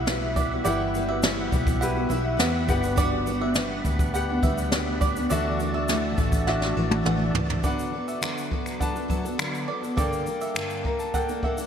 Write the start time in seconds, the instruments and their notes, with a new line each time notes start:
Already playing: fingered electric bass B1, tonewheel organ G3 E5 F#5 B5, upright piano E4 G4 F5 F#5
0.06 steel-string acoustic guitar G3 B3 E4 F#4, snare, shaker
0.36 steel-string acoustic guitar G3 B3 E4 F#4, five-string banjo D5, kick, shaker
0.51 steel-string acoustic guitar B3 E4 F#4
0.64 fingered electric bass G1, steel-string acoustic guitar G3 B3 E4 F#4, upright piano E4 G4 F#5, five-string banjo D5, shaker
0.94 steel-string acoustic guitar G3 B3 E4 F#4, shaker
1.08 steel-string acoustic guitar B3 E4 F#4, five-string banjo E5
1.23 steel-string acoustic guitar G3 B3 E4 F#4, snare, shaker
1.51 fingered electric bass B1, steel-string acoustic guitar G3 B3 E4 F#4, kick, shaker
1.67 kick, shaker
1.81 upright piano E4 G4 B4, five-string banjo F#5, shaker
1.95 steel-string acoustic guitar B3 E4 F#4
2.09 fingered electric bass B1, steel-string acoustic guitar G3 B3 E4 F#4, five-string banjo E5, shaker
2.37 fingered electric bass E2, steel-string acoustic guitar G3 B3 E4 F#4, five-string banjo F#5, snare, shaker
2.66 fingered electric bass G1, steel-string acoustic guitar G3 B3 D4 F#4, tonewheel organ G3 D5, upright piano B3 G4 F#5, kick, shaker
2.81 steel-string acoustic guitar B3 D4 F#4, shaker
2.96 steel-string acoustic guitar G3 B3 D4 F#4, five-string banjo D5, kick, shaker
3.26 steel-string acoustic guitar G3 B3 D4 F#4, shaker
3.41 steel-string acoustic guitar B3 D4 F#4, five-string banjo E5
3.55 steel-string acoustic guitar G3 B3 D4 F#4, snare, shaker
3.84 fingered electric bass D2, steel-string acoustic guitar G3 B3 D4 F#4, kick, shaker
3.99 kick, shaker
4.14 upright piano B3 G4 F#5, five-string banjo F#5, shaker
4.28 steel-string acoustic guitar B3 D4 F#4
4.43 fingered electric bass D2, steel-string acoustic guitar G3 B3 D4 F#4, five-string banjo E5, kick, shaker
4.58 shaker
4.72 steel-string acoustic guitar G3 B3 D4 F#4, snare, shaker
5.01 steel-string acoustic guitar G3 B3 D4 F#4, five-string banjo D5, kick, shaker
5.15 steel-string acoustic guitar B3 D4 F#4, shaker
5.29 fingered electric bass D2, steel-string acoustic guitar D3 E3 A3 D4 F#4, upright piano D4 F#4 E5, tonewheel organ F#4 E5 A5, five-string banjo D5, shaker
5.59 steel-string acoustic guitar E3 A3 D4 F#4, shaker
5.73 steel-string acoustic guitar A3 D4 F#4, five-string banjo E5
5.88 steel-string acoustic guitar D3 E3 A3 D4 F#4, snare, shaker
6.15 fingered electric bass A1, steel-string acoustic guitar E3 A3 D4 F#4, kick, shaker
6.32 kick, shaker
6.47 upright piano D4 F#4 E5, five-string banjo F#5, snare
6.60 steel-string acoustic guitar A3 D4 F#4, snare
6.75 fingered electric bass A1, steel-string acoustic guitar E3 A3 D4 F#4, five-string banjo E5
6.91 high tom
7.04 fingered electric bass A1, steel-string acoustic guitar D3 E3 A3 D4 F#4, five-string banjo F#5, mid tom
7.34 fingered electric bass C#2, steel-string acoustic guitar E3 A3 D4 F#4, floor tom
7.48 steel-string acoustic guitar A3 D4 F#4, floor tom
7.62 steel-string acoustic guitar D3 F#3 B3 F#4 A4, upright piano D4 B4 F#5, five-string banjo D5, kick, shaker
7.79 shaker
7.91 steel-string acoustic guitar F#3 B3 F#4 A4
8.08 five-string banjo E5, shaker
8.21 steel-string acoustic guitar D3 F#3 B3 F#4 A4, finger snap, shaker
8.38 shaker
8.50 steel-string acoustic guitar F#3 B3 F#4 A4, kick
8.66 finger snap, shaker
8.80 upright piano D4 B4 A5, five-string banjo F#5, kick, shaker
8.94 steel-string acoustic guitar B3 F#4 A4, shaker
9.08 steel-string acoustic guitar F#3 B3 F#4 A4, five-string banjo E5, kick, shaker
9.23 steel-string acoustic guitar B3 F#4 A4, shaker
9.38 steel-string acoustic guitar D3 F#3 B3 F#4 A4, finger snap, shaker
9.55 shaker
9.66 steel-string acoustic guitar F#3 B3 F#4 A4, five-string banjo D5
9.81 steel-string acoustic guitar B3 F#4 A4, shaker
9.95 steel-string acoustic guitar G2 D3 G3 A#3 D4 A4, upright piano A#3 A4 G5, five-string banjo D5, kick, shaker
10.13 shaker
10.24 steel-string acoustic guitar G3 A#3 D4 A4, shaker
10.41 five-string banjo E5, shaker
10.54 steel-string acoustic guitar G2 D3 G3 A#3 D4 A4, finger snap, shaker
10.70 shaker
10.82 steel-string acoustic guitar G3 A#3 D4 A4, upright piano A#5, kick
10.99 upright piano A5, shaker
11.14 upright piano A#3 A4 G5, five-string banjo F#5, kick, shaker
11.28 steel-string acoustic guitar G3 A#3 D4 A4, shaker
11.43 steel-string acoustic guitar G3 A#3 D4 A4, five-string banjo E5, upright piano F#5, kick
11.57 steel-string acoustic guitar G3 A#3 D4 A4, shaker